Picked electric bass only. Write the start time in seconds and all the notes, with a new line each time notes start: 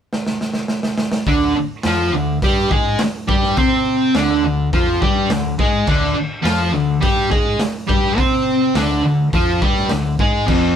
1.27 D2
1.56 muted picked electric bass stroke
1.84 F2
2.12 D2
2.42 G2
2.70 G#2
3.28 G2
3.57 C3
4.15 D2
4.43 D2
4.73 F2
5.01 G2
5.29 D2
5.58 G#2
5.87 D2
6.15 muted picked electric bass stroke
6.44 F2
6.73 D2
7.03 G2
7.31 G#2
7.90 G2
8.17 C3
8.74 D2
9.03 D2
9.33 F2
9.62 G2
9.90 D2
10.19 G#2
10.48 F1